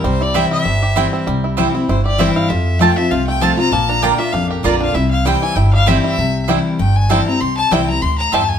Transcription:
Already playing: C4 E4 G4
0.04 C2 C3 G3 C5
0.21 E4 D5
0.34 E3 G3 C4 E4 C5 E5 G5
0.51 G3 E5
0.65 G1 G2 C4
0.83 G4
0.96 E3 G3 C4 E4 C5 G5
1.13 C4
1.27 C2 C3 G3
1.44 E4
1.57 E3 G3 C4 E4 C5 G5
1.74 C4 E4
1.88 G1 G2 E4 C5
2.05 G4 D5
2.18 E3 G3 C4 E4 C5 E5 G5
2.36 E4 F5
2.49 F2 F4 E5
2.79 F3 A3 C4 F4 C5 G5 A5
2.96 F3 C4 F4 E5
3.11 C2 C3 F4 F5
3.27 A3 G5
3.41 F3 A3 C4 F4 C5 A5
3.57 C4 F4 A#5
3.72 A#1 A#2 A#3 A5
3.89 D4 A#5
4.02 D3 A#3 D4 F4 D5 G5 A#5
4.18 A#3 D4 F4 E5
4.32 A1 F2 D4 F5
4.50 G4 A#4
4.63 A#1 D3 A#3 D4 F4 D5 A#5
4.80 D4 F5
4.94 C2 C3 E4 E5
5.11 F5
5.25 E3 G3 C4 E4 C5 G5
5.42 E3 G#5
5.56 G1 G2 E4 G5
5.73 G3 F5
5.86 E3 G3 C4 E4 C5 E5 G5
6.04 E4 E5
6.17 C2 C3
6.48 E3 G3 C4 E4 C5 G5
6.79 G1 G2 G5
6.96 G#5
7.09 E3 G3 C4 E4 C5 G5 A5
7.26 C4 E4 A#5
7.40 C2 C3 C6
7.57 A5
7.71 C2 E3 G3 C4 E4 C5 G5
7.87 C4 E4 A#5
8.02 D2 A2 C6
8.18 A#5
8.32 E2 G2 G3 C4 E4 C5 G5 A5
8.49 G#5

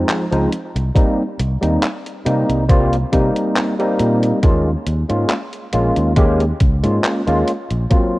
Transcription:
Already playing: F3 G#3 C4 D#4
0.09 clap, closed hi-hat
0.31 C#2 F3 G#3 C4 D#4, closed hi-hat
0.53 closed hi-hat
0.76 C2, closed hi-hat
0.95 G3 A#3 C4 D#4, kick, closed hi-hat
1.39 C2, closed hi-hat
1.61 D#2 G3 A#3 C4 D#4, closed hi-hat
1.83 clap, closed hi-hat
2.06 closed hi-hat
2.25 C3 G3 A#3 C4 D#4, closed hi-hat
2.49 C2, closed hi-hat
2.68 G3 A#3 C4 F4, kick, closed hi-hat
2.93 closed hi-hat
3.12 C3 G3 A#3 C4 D#4, kick, closed hi-hat
3.36 closed hi-hat
3.56 clap, closed hi-hat
3.79 G3 A#3 C4 D#4, closed hi-hat
3.99 A#2, closed hi-hat
4.23 closed hi-hat
4.43 D#2 G#3 A#3 C#4 F4, kick, closed hi-hat
4.87 D#2, closed hi-hat
5.09 G#2 G#3 A#3 C#4 F4, closed hi-hat
5.30 clap, closed hi-hat
5.53 closed hi-hat
5.73 A#1 G#3 A#3 C#4 F4, closed hi-hat
5.96 D#2, closed hi-hat
6.16 G#3 A#3 C#4 G4, kick, closed hi-hat
6.40 closed hi-hat
6.60 C#2, kick, closed hi-hat
6.83 G#2 G#3 A#3 C#4 F4, closed hi-hat
7.04 clap, closed hi-hat
7.27 D#2 G#3 A#3 C#4 F4, closed hi-hat
7.48 closed hi-hat
7.71 A#1, closed hi-hat
7.90 F#3 A#3 C4 F4, kick, closed hi-hat

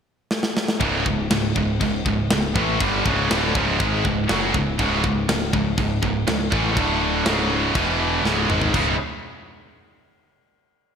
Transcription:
0.31 snare
0.43 snare
0.57 snare
0.68 snare
0.80 C#1 C#2 G#2 C#3, kick, crash
1.05 C#1 C#2 G#2, kick
1.30 C#1 C#2 G#2, snare, crash
1.56 C#1 C#2 G#2, kick
1.80 C#1 C#2 G#2, kick, crash
2.05 C#1 C#2 G#2, kick
2.30 C#1 C#2 G#2, snare, crash
2.54 A1 A2 E3 A3, kick
2.80 G1 G2 D3 G3, kick, crash
3.05 C#1 C#2 G#2 C#3, kick
3.30 D1 D2 A2 D3, snare, crash
3.54 C#1 C#2 G#2 C#3, kick
3.78 G#1 G#2 D#3 G#3, kick, crash
4.03 C#1 C#2 G#2, kick
4.28 F#1 F#2 C#3 F#3, snare, crash
4.54 C#1 C#2 G#2, kick
4.78 C#1 C#2 G#2 C#3, kick, crash
5.03 C#1 C#2 G#2, kick
5.29 C#1 C#2 G#2, snare, crash
5.53 C#1 C#2 G#2, kick
5.77 C#1 C#2 G#2, kick, crash
6.02 C#1 C#2 G#2, kick
6.27 C#1 C#2 G#2, snare, crash
6.51 A1 A2 E3 A3, kick
6.76 D1 D2 A2 D3, kick, crash
7.25 C#1 C#2 G#2 C#3, snare, crash
7.75 E1 E2 B2 E3, kick, crash
8.23 C#1 C#2 G#2 C#3, snare
8.48 G#1 G#2 D#3 G#3, mid tom
8.61 floor tom
8.73 C#1 C#2 G#2 C#3 G#3 E4, kick, floor tom, china

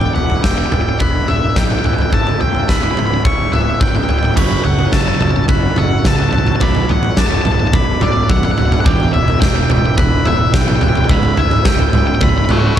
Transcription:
Already playing: E2 B3 E4 G4 D5 G5 D6
0.01 floor tom
0.15 E1 B2 F#5, floor tom
0.30 floor tom
0.43 E1 E3 G5 E6, kick, snare
0.51 G5
0.58 G5
0.66 G5
0.72 E1 B3 G5, floor tom, mid tom
0.81 G5
0.89 G5
0.99 E1 E4 B5 F#6, kick, floor tom
1.27 E1 B3 E5 E6, mid tom
1.56 B1 G3 G5, kick, snare
1.64 G5
1.70 G5, mid tom
1.79 G5
1.84 B0 E3 G5 F#6, floor tom
1.94 G5
1.98 G5, floor tom
2.12 C#1 C#2 C#5 A5 E6, kick, floor tom
2.27 floor tom
2.40 B0 G#2 G5, floor tom
2.55 floor tom
2.68 C#1 C#3 B5 E6, kick, snare
2.76 B5
2.83 B5, floor tom
2.91 B5
2.96 C#1 B3 B5, floor tom, mid tom
3.06 B5
3.14 B5
3.24 C#1 C#4 C#6 E6, kick, floor tom
3.52 C#1 B3 E5 F#6, floor tom, mid tom
3.80 C#1 E3 G5, kick
3.88 G5
3.95 G5, mid tom
4.04 G5
4.08 C#1 C#3 G5 G6, floor tom
4.19 G5
4.23 G5, floor tom, mid tom
4.36 F#1 F#2 C#3 F#3 C#4 F#4 B5 C#6, kick, floor tom, crash
4.51 floor tom
4.64 F#1 F#2 C#3 F#5, floor tom
4.79 floor tom
4.92 F#1 F#2 C#3 F#3 A5 E6, kick, snare
5.01 A5
5.08 A5
5.15 A5
5.21 F#1 F#2 C#3 C#4 A5, floor tom, mid tom
5.31 A5
5.36 A5
5.48 F#1 F#2 C#3 F#4 B5 F#6, kick, floor tom
5.76 F#1 F#2 C#3 C#4 F#5 E6, mid tom
6.04 C#2 F#2 C#3 B3 A5, kick, snare
6.16 A5, mid tom
6.23 A5
6.31 A#1 F#2 C#3 F#3 A5 F#6, floor tom
6.39 A5
6.46 A5, floor tom
6.56 A5
6.60 B0 B1 F#2 B2 A3 D4 B4 B5 D6, kick, floor tom
6.75 floor tom
6.89 A1 B1 F#2 F#5, floor tom
7.03 floor tom
7.17 B0 B1 F#2 B2 A5 D6, kick, snare
7.27 A5
7.31 floor tom
7.35 A5
7.42 B1 F#2 A3 A5, floor tom, mid tom
7.46 B0
7.52 A5
7.60 A5
7.67 A5
7.73 B0 B1 F#2 D4 B5 D6, kick, floor tom
8.01 B0 B1 F#2 A3 D5 E6, floor tom, mid tom
8.29 B0 B1 F#2 F#3 F#5, kick
8.37 F#5
8.43 F#5, mid tom
8.51 F#5
8.58 D1 B1 F#2 B2 F#5 F#6, floor tom
8.66 F#5
8.72 F#5, floor tom, mid tom
8.80 F#5
8.85 E1 E2 B2 E3 G3 E4 G5 D6, kick, floor tom
9.00 floor tom
9.13 E1 E2 B2 E5, floor tom
9.28 floor tom
9.41 E1 E2 B2 E3 G5 E6, kick, snare
9.48 G5
9.56 G5
9.63 G5
9.70 E1 E2 B2 B3 G5, floor tom, mid tom
9.79 G5
9.86 G5
9.97 E1 E2 B2 E4 B5 F#6, kick, floor tom
10.25 E1 E2 B2 B3 E5 E6, mid tom
10.53 B1 E2 B2 G3 G5, kick, snare
10.62 G5
10.68 G5, mid tom
10.76 G5
10.81 C1 E2 B2 E3 G5 F#6, floor tom
10.89 G5
10.95 G5, floor tom
11.04 G5
11.09 C#1 C#2 G#2 C#3 C#4 E4 B5 E6, kick, floor tom
11.23 floor tom
11.37 B0 C#2 G#2 E5, floor tom
11.51 floor tom
11.65 C#1 C#2 G#2 C#3 G5 E6, kick, snare
11.75 G5
11.79 floor tom
11.83 G5
11.90 B3 G5, floor tom, mid tom
11.94 C#1 C#2 G#2
11.99 G5
12.07 G5
12.15 G5
12.21 C#1 C#2 G#2 C#4 B5 E6, kick, floor tom
12.29 B5
12.38 B5
12.45 B5, floor tom, mid tom
12.49 C#1 C#2 G#2 B3 C#5 B5 F#6
12.60 B5
12.67 B5

